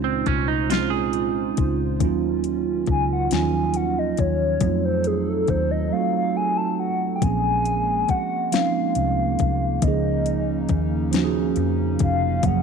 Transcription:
Already playing: fingered electric bass C#2, analog synth pad A#2 D#4 F4 C5, tine electric piano G#3 C4 C#4 D#4 F4
0.04 clean electric guitar C4
0.26 fingered electric bass C2, clean electric guitar C#4, kick, closed hi-hat
0.48 clean electric guitar D#4
0.69 tine electric piano G#3 C4 C#4 D#4, clean electric guitar F4, snare, closed hi-hat
0.74 tine electric piano F4
0.90 clean electric guitar G#4
1.13 closed hi-hat
1.57 fingered electric bass C#2, kick, closed hi-hat
1.99 fingered electric bass D#2, analog synth pad D#3 C#4, tine electric piano F#3 A#3 C#4, kick, closed hi-hat
2.03 tine electric piano D#4 F4
2.44 closed hi-hat
2.86 fingered electric bass C#2, kick, closed hi-hat
2.91 soft synth lead G#5
3.13 soft synth lead F#5
3.30 fingered electric bass D#2, tine electric piano F3 A#3 C#4, soft synth lead G#5, snare, closed hi-hat
3.34 tine electric piano F#3 D#4 F4
3.74 soft synth lead F#5, closed hi-hat
3.99 soft synth lead D#5
4.17 fingered electric bass D#2, soft synth lead C#5, kick, closed hi-hat
4.61 fingered electric bass F2, tine electric piano F#3 A3 C4, analog synth pad F#3 D#4 A4, kick, closed hi-hat
4.65 tine electric piano D#4 F4
4.85 soft synth lead C5
5.04 soft synth lead G#4, closed hi-hat
5.29 soft synth lead A4
5.47 fingered electric bass D#2, soft synth lead C5, kick, closed hi-hat
5.71 soft synth lead D#5
5.91 tine electric piano F#3 A3 C4, soft synth lead F5
5.95 tine electric piano D#4 F#4
6.15 soft synth lead F5
6.36 soft synth lead G#5
6.57 soft synth lead A5
6.80 soft synth lead F#5
7.15 soft synth lead G5
7.21 fingered electric bass A#1, tine electric piano F3 A#3 C4, analog synth pad G#3 A#3, soft synth lead G#5, kick, closed hi-hat
7.26 tine electric piano C#4 G#4
7.65 closed hi-hat
8.08 soft synth lead F#5, muted fingered electric bass stroke, kick, closed hi-hat
8.51 tine electric piano F3 A#3 C4, soft synth lead F5, snare, closed hi-hat
8.56 tine electric piano C#4 D#4
8.95 fingered electric bass C2, closed hi-hat
9.39 fingered electric bass C2, kick, closed hi-hat
9.81 fingered electric bass C#2, analog synth pad C#3 C#4 D#4, tine electric piano D#3 A#3 C#4, soft synth lead D#5, kick, closed hi-hat
9.86 tine electric piano F3 D#4 G#4
10.26 closed hi-hat
10.69 fingered electric bass D#2, kick, closed hi-hat
11.12 tine electric piano F3 A#3 C#4, snare, closed hi-hat
11.16 tine electric piano D#4 F#4
11.24 tine electric piano G#4
11.56 fingered electric bass F2, closed hi-hat
11.99 fingered electric bass F1, kick, closed hi-hat
12.03 soft synth lead F5
12.42 fingered electric bass F#1, tine electric piano F#3 A#3 C#4, analog synth pad A#3 G#4 A#4, soft synth lead F#5, kick, closed hi-hat
12.46 tine electric piano F3 G#4

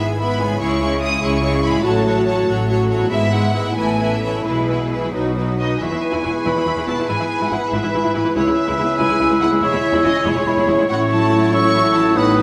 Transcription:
Already playing: double bass section G#1, harp G#2 G#3 E4 G#4, cello section G#2, french horn section G#3 E4
0.00 viola section G#3 B3, violin section G#4 G#5
0.19 viola section B3 E4, violin section B4 E5 B5
0.40 harp C#3, viola section G#3 B3, violin section G#4 G#5
0.47 harp G#3
0.52 harp E4
0.56 harp G#4, violin section G#4 C#5
0.61 double bass section C#2, cello section C#3, viola section G#3 E4, french horn section G#3 E4, violin section C#6
0.80 viola section G#3 E4, violin section G#4 C#5
1.01 viola section G#3 E4, violin section G#4 C#5 D#6
1.21 double bass section C#2, cello section C#3, viola section G#3 E4, violin section G#4 C#5 C#6
1.42 viola section G#3 E4, violin section G#4 C#5
1.63 harp A2, viola section G#3 E4, violin section G#4 C#5 B5
1.71 harp A3
1.75 harp F#4
1.80 french horn section A3 F#4, harp C#5
1.84 double bass section A1, cello section A2, viola section F#3 F#4, violin section A4 C#5 A5
2.06 viola section F#3 F#4, violin section A4 C#5
2.26 viola section F#3 F#4, violin section A4 C#5 A5
2.47 double bass section A1, cello section A2, viola section F#3 F#4, violin section A4 C#5
2.68 viola section F#3 F#4, violin section A4 C#5
2.89 harp G#2, viola section F#3 F#4, violin section A4 C#5
2.97 harp B3
3.02 harp E4
3.06 cello section G#2, harp E5
3.10 double bass section G#1, viola section G#3 E4, french horn section B3 E4, violin section B4 E5
3.32 viola section G#3 E4, violin section B4 E5 F#5
3.54 viola section G#3 E4, violin section B4 E5
3.58 harp A2
3.63 harp A3
3.67 harp E4
3.72 harp E5
3.76 double bass section A1, cello section A2, viola section E3 E4, french horn section A3, violin section A4 E5 G#5
3.99 viola section E3 E4, violin section A4 E5
4.11 violin section E5
4.22 viola section E3 E4, violin section A4 C#5 E5
4.27 harp B2
4.31 harp G#3
4.36 harp E4
4.41 french horn section G#3, harp E5
4.45 double bass section B1, cello section B2, viola section E3 E4, violin section G#4 B4
4.68 viola section E3 E4, violin section G#4 B4
4.91 viola section E3 E4, violin section G#4 B4
4.96 harp B2
5.01 harp F#3
5.05 harp F#4
5.10 viola section F#3 D#4, french horn section F#3 D#4, harp D#5
5.14 double bass section B1, cello section B2, violin section F#4 B4
5.35 viola section F#3 D#4, violin section F#4 B4
5.58 viola section F#3 D#4, violin section F#4 B4 D#5
5.81 double bass section E1, cello section E2, harp E2, viola section E3 E4, clarinet E4, violin section G#4 B4 E5, oboe B4, flute C#6
5.91 cello section E2, viola section E3 E4
6.03 harp G#3, violin section G#5
6.12 cello section E2, viola section E3 E4
6.23 double bass section E1, cello section E2, viola section E3 E4, french horn section B3 E4, harp E4
6.45 double bass section E1, cello section E2, viola section E3 E4, harp B4, violin section B5
6.56 cello section E2, viola section E3 E4
6.66 double bass section E1, cello section E2, viola section E3 E4, harp E4
6.76 cello section E2, viola section E3 E4
6.86 double bass section E1, cello section E2, harp B2, viola section E3 E4, french horn section B3 E4, violin section A5
6.98 cello section E2, viola section E3 E4
7.08 double bass section G#1, cello section G#2, harp G#2, viola section E3 E4, violin section G#5, flute B5
7.19 cello section G#2, viola section E3 E4
7.31 harp G#3
7.40 cello section G#2, viola section E3 E4
7.50 double bass section G#1, cello section G#2, viola section E3 E4, french horn section B3 E4, harp E4, violin section F#5
7.71 double bass section G#1, cello section G#2, viola section E3 E4, harp B4, violin section E5
7.83 cello section G#2, viola section E3 E4
7.94 double bass section G#1, cello section G#2, viola section E3 E4, harp E4
8.03 cello section G#2, viola section E3 E4
8.14 double bass section G#1, cello section G#2, viola section E3 E4, harp E3, french horn section B3 E4, violin section B4
8.24 cello section G#2, viola section E3 E4
8.35 double bass section C#2, cello section C#2, harp C#3, viola section G#3 E4, clarinet E4, violin section G#4 B4 C#5, oboe B4, flute E6
8.46 cello section C#2, viola section G#3 E4
8.57 harp G#3, violin section E5
8.67 cello section C#2, viola section G#3 E4
8.78 double bass section C#2, cello section C#2, viola section G#3 E4, french horn section B3 E4, harp E4
8.98 cello section C#2, double bass section C#2, viola section G#3 E4, harp B4, violin section G#5
9.09 cello section C#2, viola section G#3 E4
9.20 cello section C#2, double bass section C#2, viola section G#3 E4, harp E4
9.30 cello section C#2, viola section G#3 E4
9.41 cello section C#2, double bass section C#2, viola section G#3 E4, french horn section B3 E4, harp C#4, violin section F#5
9.51 cello section C#2, viola section G#3 E4
9.61 double bass section E1, cello section E2, harp E3, viola section G#3 E4, violin section C#5 E5, oboe C#5
9.72 cello section E2, viola section G#3 E4
9.85 harp E4
9.93 cello section E2, viola section G#3 E4
10.04 double bass section E1, cello section E2, viola section G#3 E4, french horn section C#4 E4, harp C#5, violin section D#5
10.25 double bass section E1, cello section E2, viola section G#3 E4, harp G#4, violin section C#5, flute C#6
10.35 cello section E2, viola section G#3 E4
10.46 double bass section E1, cello section E2, viola section G#3 E4, harp C#5, flute B5
10.56 cello section E2, viola section G#3 E4
10.66 double bass section E1, cello section E2, viola section G#3 E4, harp G#3, french horn section C#4 E4, flute C#6
10.78 cello section E2, viola section G#3 E4
10.88 double bass section A1, cello section A2, harp A2, viola section A3 E4, french horn section C#4 E4, clarinet E4, violin section F#4 C#5 F#5, oboe C#5
11.10 harp F#3, violin section A5
11.32 harp E4
11.52 french horn section C#4 E4, clarinet E4, oboe C#5, harp C#5, violin section C#6, flute E6
11.75 harp E4
11.94 harp E3, violin section A5
12.16 harp A2, french horn section B3 D#4, viola section B3 D#4, clarinet D#4, violin section B4 F#5, oboe B4, flute D#6
12.37 harp F#3, violin section A5

